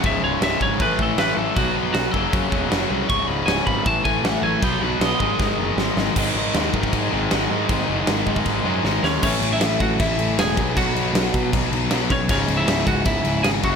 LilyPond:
<<
  \new Staff \with { instrumentName = "Lead electric guitar" } { \time 4/4 \key gis \phrygian \tempo 4 = 157 e''8 cis''8 e''8 cis''8 b'8 a'8 b'8 a'8 | fis'8 r8 fis'8 a'2 r8 | cis'''8 b''8 gis''8 b''8 a''8 gis''8 fis''8 gis''8 | g''8 fis''8 dis''2. |
r1 | r2. r8 <cis' cis''>8 | <cis' cis''>8. <e' e''>8. <fis' fis''>8 <e' e''>4 <gis' gis''>4 | <fis' fis''>2 r4. <cis' cis''>8 |
<cis' cis''>8. <e' e''>8. <fis' fis''>8 <e' e''>4 <gis' gis''>8 <fis' fis''>8 | }
  \new Staff \with { instrumentName = "Distorted electric guitar" } { \clef bass \time 4/4 \key gis \phrygian <cis, gis, cis>8 <cis, gis, cis>8 <cis, gis, cis>8 <cis, gis, cis>8 <a, e a>8 <a, e a>8 <a, e a>8 <a, e a>8 | <b, fis b>8 <b, fis b>8 <b, fis b>8 <fis, cis fis>8 <fis, cis fis>8 <fis, cis fis>8 <fis, cis fis>8 <fis, cis fis>8 | <cis, gis, cis>8 <cis, gis, cis>8 <cis, gis, cis>8 <cis, gis, cis>8 <a, e a>8 <a, e a>8 <a, e a>8 <a, e a>8 | <b, fis b>8 <b, fis b>8 <b, fis b>8 <gis, dis gis>8 <gis, dis gis>8 <gis, dis gis>8 <gis, dis gis>8 <gis, dis gis>8 |
<gis, dis gis>8 <gis, dis gis>8 <gis, dis gis>8 <gis, dis gis>8 <gis, dis gis>8 <gis, dis gis>8 <gis, dis gis>8 <gis, dis gis>8 | <gis, dis gis>8 <gis, dis gis>8 <gis, dis gis>8 <gis, dis gis>8 <gis, dis gis>8 <gis, dis gis>8 <gis, dis gis>8 <gis, dis gis>8 | <a, e a>2.~ <a, e a>8 <b, fis b>8~ | <b, fis b>2. <b, fis b>8 r8 |
<cis, gis, cis>2.~ <cis, gis, cis>8 <fis, cis fis>8 | }
  \new Staff \with { instrumentName = "Distorted electric guitar" } { \clef bass \time 4/4 \key gis \phrygian <cis, gis, cis>2 <a, e a>2 | <b, fis b>4. <fis, cis fis>2~ <fis, cis fis>8 | <cis, gis, cis>2 <a, e a>2 | <b, fis b>4. <gis, dis gis>2~ <gis, dis gis>8 |
<gis, dis gis>2~ <gis, dis gis>8 <gis, dis gis>8 <gis, dis gis>4 | <gis, dis gis>2~ <gis, dis gis>8 <gis, dis gis>8 <gis, dis gis>4 | r1 | r1 |
r1 | }
  \new Staff \with { instrumentName = "Picked electric bass" } { \clef bass \time 4/4 \key gis \phrygian cis,,8 cis,,8 cis,,8 gis,,8 a,,8 a,,8 a,,8 a,,8 | b,,8 b,,8 b,,8 fis,,8 fis,8 e,,8 fis,,8 bis,,8 | cis,,8 cis,,8 cis,,8 gis,,8 a,,8 a,,8 a,,8 a,,8 | b,,8 b,,8 b,,8 gis,,8 gis,8 fis,,8 gis,,8 gis,,8 |
gis,,8 gis,,8 dis,8 gis,,8 gis,8 gis,,8 gis,,8 gis,8 | gis,,8 fis,,8 gis,,8 gis,,8 gis,,8 fis,8 gis,,8 dis,8 | a,,8 a,,8 a,,8 a,,8 a,,8 a,,8 e,,8 b,,8 | b,,8 b,,8 b,,8 b,8 b,,8 b,,8 b,,8 b,,8 |
cis,,8 cis,,8 cis,,8 cis,,8 cis,,8 cis,,8 gis,,8 fis,,8 | }
  \new DrumStaff \with { instrumentName = "Drums" } \drummode { \time 4/4 <cymc bd>4 <cymc sn>8 bd8 <cymc bd>8 bd8 <cymc sn>4 | <cymc bd>4 <cymc sn>8 bd8 <cymc bd>8 bd8 <cymc sn>4 | <cymc bd>4 <cymc sn>8 bd8 <cymc bd>8 bd8 <cymc sn>4 | <cymc bd>4 <cymc sn>8 bd8 <bd sn>4 sn8 sn8 |
<cymc bd>4 <cymc sn>8 bd16 bd16 <cymc bd>4 <cymc sn>4 | <cymc bd>4 <cymc sn>8 bd16 bd16 <cymc bd>4 sn8 sn8 | <cymc bd>8 cymc8 <cymc sn>8 <cymc bd>8 <cymc bd>8 cymc8 <cymc sn>8 <cymc bd>8 | <cymc bd>8 cymc8 <cymc sn>8 <cymc bd>8 <cymc bd>8 cymc8 <cymc sn>8 <cymc bd>8 |
<cymc bd>8 cymc8 <cymc sn>8 <cymc bd>8 <cymc bd>8 cymc8 <cymc sn>8 <cymc bd>8 | }
>>